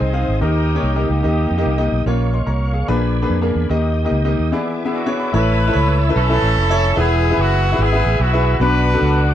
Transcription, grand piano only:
0.13 C4 D#4 G#4 F5
0.40 D#3 A#3 D#4 G4 D#5
0.75 A#3 D#4 G4 C#5
0.96 A#3 D#4 G4 D#5
1.23 A#3 D#4 G4 D#5
1.58 A#3 D#4 G4 D#5
1.78 A#3 D#4 G4 D#5
2.06 A#2 A#3 C#4 F4 C#5
2.33 D#5 C6
2.47 C#5 A#5
2.73 G#4 F5
2.88 A#2 A#3 D4 G#4 B4
3.22 A#3 D4 G#4 B4
3.41 A#3 D4 G#4 A#4
3.69 D#3 A#3 D#4 G4 D#5
4.05 A#3 D#4 G4 D#5
4.25 A#3 D#4 G4 D#5
4.52 E3 B3 E4 G#4 D5
4.85 B3 E4 G#4 E5
4.92 D5
5.06 B3 E4 G#4 C#5
5.20 B5
5.33 A2 E4 A4 C#5
5.67 E4 A4 C5
5.74 C#5
6.09 E4 A4 B4
6.30 E4 A4 B4
6.70 E4 A4 C#5
6.96 E3 E4 G#4 B4
7.31 E4 G#4 B4
7.72 E4 G#4 B4
7.92 E4 G#4 B4
8.33 E4 G#4 B4
8.60 B2 D4 F#4 B4
8.93 D4 F#4 A4

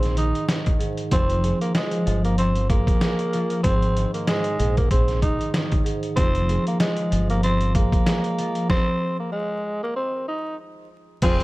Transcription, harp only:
Already playing: G#2 D#3
0.16 D#3
0.49 D#3
0.79 G#2
1.12 F3
1.43 G#3
1.76 F3
2.06 F3
2.38 F3
2.70 G#3
3.00 G#3
3.34 F3
3.64 G#2
3.96 D#3
4.27 G#2
4.59 G#2
4.91 G#2
5.22 D#3
5.55 D#3
5.84 G#2
6.18 F3
6.49 G#3
6.81 F3
7.11 F3
7.44 F3
7.76 G#3
8.06 G#3
8.39 F3
11.23 F3

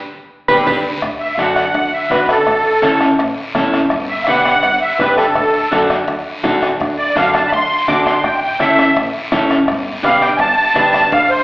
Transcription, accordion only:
1.20 E5
1.35 F5
1.39 F#5
1.93 E5
2.12 B4
2.30 A4
4.09 E5
4.23 F5
4.28 F#5
4.82 E5
4.99 B4
5.17 A4
6.98 D5
7.17 F5
7.33 A5
7.48 B5
7.52 C6
7.88 D6
8.05 C6
8.23 G5
8.41 G5
8.60 E5
10.04 F5
10.21 G5
10.37 G#5
10.41 A5
11.12 F5
11.30 C5

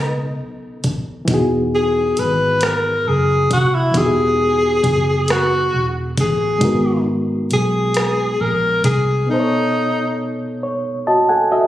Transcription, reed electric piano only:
Already playing: B2 B3 C#4 D#4 A4
1.25 E3 B3
1.29 D#4 F#4
1.34 G#4
3.91 E3 B3
3.96 D#4 F#4
4.00 G4
4.06 G#4
6.58 G#3 D#4
6.63 F#4 A#4
6.67 B3
9.25 B2 B3
9.29 D#4 A4
9.33 C5
9.40 C#5
10.63 C#5
11.07 F#4 D#5 A5
11.29 A4 F#5 G#5
11.52 F#4 D#5 E5

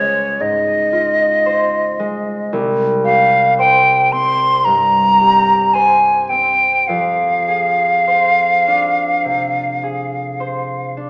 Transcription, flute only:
Already playing: C#5
0.41 D#5
3.05 F5
3.59 G5
4.12 C6
4.65 A#5
5.74 G#5
6.29 G5
6.88 F5

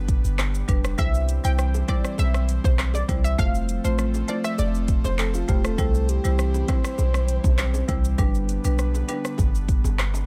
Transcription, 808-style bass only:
Already playing: G1
0.24 G1
0.69 F1
0.99 C2
1.44 C2
2.19 B1
2.64 B1
3.09 C2
3.39 F1
3.85 A1
4.59 F1
5.05 F1
5.49 E1
5.79 C2
6.25 C2
6.99 B1
7.44 B1
7.89 C2
8.19 G1
8.64 B1
9.39 G1
9.84 G1

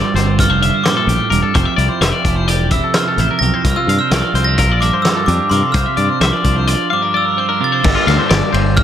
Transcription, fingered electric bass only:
0.14 G1
0.49 F1
1.07 A#1
1.31 E1
1.55 F1
1.78 C2
2.01 F1
2.25 F1
2.59 E1
3.18 A1
3.41 B1
3.64 C2
3.87 G2
4.11 C2
4.34 C2
4.70 A#1
5.28 F2
5.51 G2
5.74 C2
5.97 G2
6.20 C2
6.44 C2
7.85 G1
8.07 D2
8.31 G1
8.53 G1

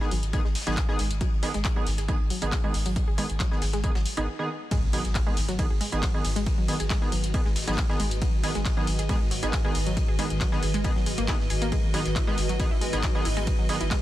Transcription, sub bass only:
0.11 G#1
0.23 G#1
0.45 G#1
0.67 G#1
0.99 G#1
1.11 G#1
1.32 G#1
1.54 G#1
1.87 G#1
1.98 G#1
2.20 G#1
2.42 G#1
2.74 G#1
2.86 G#1
3.08 G#1
3.30 G#1
3.62 G#1
3.73 G#1
3.95 G#1
4.17 G#1
4.83 G#1
5.05 G#1
5.37 G#1
5.48 G#1
5.70 G#1
5.92 G#1
6.24 G#1
6.36 G#1
6.58 G#1
6.80 G#1
7.12 G#1
7.24 G#1
7.46 G#1
7.68 G#1
8.00 G#1
8.11 G#1
8.33 G#1
8.55 G#1
8.87 G#1
8.99 G#1
9.21 G#1
9.43 G#1
9.75 G#1
9.86 G#1
10.08 G#1
10.30 G#1
10.62 G#1
10.74 G#1
10.96 G#1
11.18 G#1
11.50 G#1
11.62 G#1
11.84 G#1
12.05 G#1
12.38 G#1
12.49 G#1
12.71 G#1
12.93 G#1
13.25 G#1
13.37 G#1
13.59 G#1
13.81 G#1

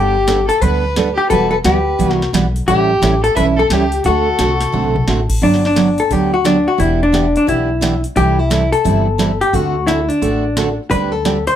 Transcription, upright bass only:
Already playing: G1
0.62 D2
1.31 E1
1.65 D2
1.99 C2
2.33 B1
2.68 A1
3.02 A1
3.37 B1
3.70 C#2
4.05 D2
4.39 C2
4.73 B1
5.08 A1
5.42 G1
6.11 D2
6.79 E1
7.48 B1
8.16 C2
8.85 G1
9.53 D2
10.22 A1
10.91 D2

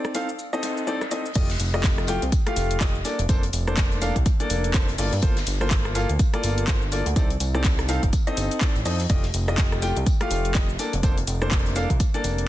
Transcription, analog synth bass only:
1.36 F1
1.60 F1
2.22 C2
2.56 F1
3.19 F1
3.29 F1
3.53 F1
4.16 C2
4.50 F1
4.98 G1
5.13 G2
5.23 G1
5.47 G1
6.09 D2
6.44 G1
7.06 D2
7.16 C2
7.40 C2
8.03 G1
8.37 G1
8.76 A1
8.85 F2
9.10 F1
9.34 F1
9.97 C2
10.31 F1
10.93 F1
11.03 F1
11.27 F1
11.90 C2
12.24 F1

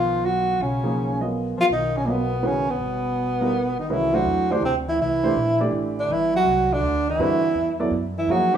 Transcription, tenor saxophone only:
Already playing: F4
0.26 F#4
0.62 C#4
1.60 F4
1.72 D#4
1.97 C#4
2.05 A#3
2.10 B3
2.47 C#4
2.70 B3
3.79 D#4
3.89 D#4 E4
4.15 F#4
4.52 D4
4.65 C4
4.89 E4
5.01 E4
6.00 D4
6.12 E4
6.36 F#4
6.73 D4
7.10 E4
8.19 E4
8.31 F#4

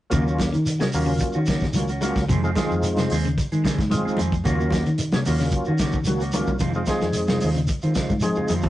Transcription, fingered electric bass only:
0.12 D#2
0.55 D#3
0.94 D#2
1.36 D#3
1.76 C#2
2.16 C#2
2.30 F2
2.71 F2
3.11 D#2
3.52 D#3
3.79 G#2
4.07 muted fingered electric bass stroke
4.20 F2
4.46 D#2
4.87 D#3
5.27 D#2
5.68 D#3
6.08 C#2
6.48 C2
6.61 F2
7.03 F2
7.44 D#2
7.83 D#3
8.10 G#2
8.37 muted fingered electric bass stroke
8.50 F2

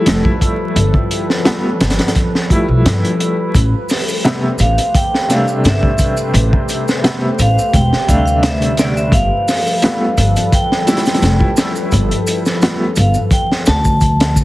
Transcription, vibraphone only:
4.61 F5
4.95 G5
5.31 F5
5.66 E5
7.41 F5
7.74 G5
8.10 F5
8.18 G5
8.26 F5
8.45 E5
8.79 D5
8.97 E5
9.13 F5
10.54 G5
12.99 F5
13.33 G5
13.68 A5

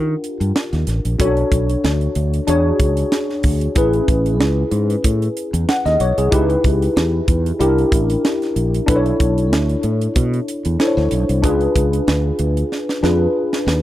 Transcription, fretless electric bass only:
Already playing: D#3
0.40 G2
0.73 D#2
0.87 A1
1.05 A#1
1.20 B1
1.52 B1
1.84 D2
2.16 D2
2.48 E2
2.79 C#2
3.44 D2
3.76 A1
4.08 A1
4.39 C#2
4.71 G#2
5.04 A2
5.53 E2
5.85 D#2
6.00 B1
6.17 C2
6.32 C#2
6.64 C#2
6.96 E2
7.28 E2
7.60 C2
7.92 A1
8.56 A#1
8.88 B1
9.20 B1
9.52 D2
9.83 A2
10.16 B2
10.65 E2
10.97 D2
11.12 B1
11.29 C2
11.43 C#2
11.76 C#2
12.07 D2
12.39 D2
13.03 F2
13.66 D#2

